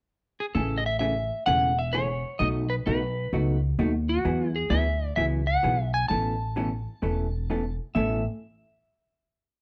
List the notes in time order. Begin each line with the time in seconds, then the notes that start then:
0.40 G#4
0.55 A1 C#3 E3 A3 C#4 G#4 A4
0.78 D#5
0.86 E5
0.99 C#3 E3 A3 C#4 G#4 E5
1.46 E1 C#3 E3 A3 C#4 G#4 F#5
1.79 E5
1.93 C#3 E3 A3 C#4 G#4 C#5
2.39 B1 B2 F#3 A3 D#4 F#4 D#5
2.70 B4
2.86 B1 B2 F#3 A3 D#4 F#4 B4
3.33 C#2 B2 F#3 A3 D#4 F#4
3.79 D#2 B2 F#3 A3 D#4 F#4
4.09 F#4
4.25 E2 E3 F#3 B3 E4 G#4
4.56 G#4
4.70 D2 E3 F#3 B3 E4 G#4 E5
5.16 C#2 E3 F#3 B3 E4 G#4 E5
5.47 F#5
5.63 B1 E3 F#3 B3 E4 G#4
5.94 G#5
6.08 A1 B2 E3 A3 C#4 A4 A5
6.56 B2 E3 A3 C#4 A4
7.02 E1 B2 E3 A3 C#4 A4
7.50 B2 E3 A3 C#4 A4
7.95 A1 A2 B2 E3 A3 C#4 A4 E5